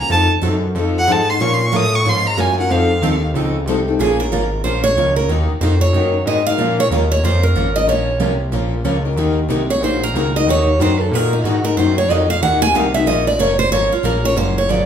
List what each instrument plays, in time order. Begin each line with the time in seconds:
0.01 steel-string acoustic guitar A#3 C#4 F#4, violin A#5
0.10 analog synth bass F2, steel-string acoustic guitar F3 C4 D#4, violin A5
0.14 steel-string acoustic guitar A4
0.31 analog synth bass F2
0.43 analog synth bass F#2, steel-string acoustic guitar F3 C4 D#4 A4
0.75 analog synth bass F2, steel-string acoustic guitar F3 C4
0.79 steel-string acoustic guitar D#4 A4
0.99 violin F#5
1.08 analog synth bass G#2, steel-string acoustic guitar F3 C4 D#4 A4, violin A5
1.29 steel-string acoustic guitar C4 D#4 A4, violin C6
1.40 analog synth bass A#2, steel-string acoustic guitar F3 A#3 C#4 F4 A#4, violin C#6
1.54 violin C6
1.66 violin C#6
1.73 analog synth bass A2, steel-string acoustic guitar F3 A#3 C#4 F4 A#4, violin D#6
1.95 violin C#6
2.05 analog synth bass G#2, steel-string acoustic guitar F3 A#3 C#4 F4 A#4, violin C6
2.27 violin A#5
2.37 analog synth bass F#2, steel-string acoustic guitar F3 A#3 C#4 F4 A#4, violin G#5
2.59 steel-string acoustic guitar C#4 F4 A#4, violin F#5
2.69 analog synth bass F2, steel-string acoustic guitar F3 C4 D#4 A4, violin F5
3.01 analog synth bass D#2, steel-string acoustic guitar F3 C4 D#4 A4
3.34 analog synth bass C#2, steel-string acoustic guitar F3 C4 D#4 A4
3.66 analog synth bass C2, steel-string acoustic guitar F3 C4 D#4 A4
3.88 steel-string acoustic guitar C4 D#4 A4
3.99 analog synth bass A#1, steel-string acoustic guitar F3 A#3 C#4 F4 G#4 A#4
4.20 steel-string acoustic guitar A#4
4.31 analog synth bass G#1, steel-string acoustic guitar F3 A#3 C#4 F4 A#4
4.64 analog synth bass A#1, steel-string acoustic guitar F3 A#3 C#4 F4 A#4 C5
4.84 steel-string acoustic guitar C#5
4.96 analog synth bass C#2, steel-string acoustic guitar F3 A#3 C#4 F4 A#4
5.16 steel-string acoustic guitar C#4 F4 A#4
5.29 analog synth bass D#2, steel-string acoustic guitar D#3 A#3 D#4 F#4 A#4
5.49 analog synth bass D#2
5.61 analog synth bass F2, steel-string acoustic guitar D#3 A#3 D#4 F#4 A#4 C5
5.81 steel-string acoustic guitar C#5
5.93 analog synth bass F#2, steel-string acoustic guitar D#3 A#3 D#4 F#4 A#4
6.26 analog synth bass G#2, steel-string acoustic guitar D#3 A#3 D#4 F#4 A#4 D#5
6.47 steel-string acoustic guitar D#4 F#4 A#4 F5
6.58 analog synth bass A#2, steel-string acoustic guitar F3 A#3 C#4 F4 A#4
6.80 steel-string acoustic guitar C#5
6.90 analog synth bass D#2, steel-string acoustic guitar F3 A#3 C#4 F4 A#4
7.12 steel-string acoustic guitar C#5
7.23 analog synth bass F2, steel-string acoustic guitar F3 A#3 C#4 F4 A#4 C5
7.43 steel-string acoustic guitar A#4
7.55 analog synth bass G#1, steel-string acoustic guitar F3 A#3 C#4 F4 A#4
7.76 steel-string acoustic guitar C#4 F4 A#4 D#5
7.87 analog synth bass A#1, steel-string acoustic guitar F3 A#3 C#4 F4 A#4 C#5
8.19 analog synth bass C2, steel-string acoustic guitar F3 A#3 C#4 F4 A#4
8.52 analog synth bass A#1, steel-string acoustic guitar F3 A#3 C#4 F4 A#4
8.85 analog synth bass C#2, steel-string acoustic guitar F3 A#3 C#4 F4 A#4
9.05 steel-string acoustic guitar C#4 F4 A#4
9.16 analog synth bass D#2, steel-string acoustic guitar D#3 A#3 D#4 F#4 A#4
9.48 analog synth bass C2, steel-string acoustic guitar D#3 A#3 D#4 F#4 A#4
9.70 steel-string acoustic guitar C#5
9.81 analog synth bass A#1, steel-string acoustic guitar D#3 A#3 D#4 F#4 A#4 C5
10.03 steel-string acoustic guitar A#4
10.14 analog synth bass C#2, steel-string acoustic guitar D#3 A#3 D#4 F#4 A#4
10.36 steel-string acoustic guitar D#4 F#4 A#4 D#5
10.47 analog synth bass D#2, steel-string acoustic guitar D#3 A#3 D#4 F#4 A#4 C#5
10.79 analog synth bass F#2, steel-string acoustic guitar D#3 A#3 D#4 F#4 A#4 C5
11.00 steel-string acoustic guitar A4
11.12 analog synth bass A#2, steel-string acoustic guitar D#3 A#3 D#4 F#4 A#4
11.33 steel-string acoustic guitar D#4
11.44 analog synth bass G#2, steel-string acoustic guitar D#3 A#3 D#4 F#4 A#4
11.64 steel-string acoustic guitar D#4 F#4 A#4
11.77 analog synth bass F#2, steel-string acoustic guitar D#3 A#3 D#4 F#4 A#4 C5
11.98 steel-string acoustic guitar C#5
12.09 analog synth bass F2, steel-string acoustic guitar D#3 A#3 D#4 F#4 A#4 D#5
12.30 steel-string acoustic guitar F5
12.42 analog synth bass D#2, steel-string acoustic guitar D#3 A#3 D#4 F#4 A#4 F#5
12.62 steel-string acoustic guitar G#5
12.74 analog synth bass C2, steel-string acoustic guitar D#3 A#3 D#4 F#4 A#4 F5
12.94 steel-string acoustic guitar D#4 F#4 A#4 E5
13.06 analog synth bass A#1, steel-string acoustic guitar F3 A#3 C#4 F4 A#4 D#5
13.27 steel-string acoustic guitar D5
13.39 analog synth bass F#1, steel-string acoustic guitar F3 A#3 C#4 F4 A#4 C#5
13.59 steel-string acoustic guitar C5
13.72 analog synth bass G#1, steel-string acoustic guitar F3 A#3 C#4 F4 A#4 C#5
13.91 analog synth bass G#1, steel-string acoustic guitar F4
14.04 analog synth bass A#1, steel-string acoustic guitar F3 A#3 C#4 F4 A#4
14.24 steel-string acoustic guitar C#4 F4 A#4 C#5
14.35 analog synth bass F#1, steel-string acoustic guitar C#3 F3 F#3 A#3 C#4 F4 F#4 A#4 C5
14.58 steel-string acoustic guitar C#5
14.68 analog synth bass G#1, steel-string acoustic guitar C#3 F3 F#3 A#3 C#4 F4 F#4 A#4 D5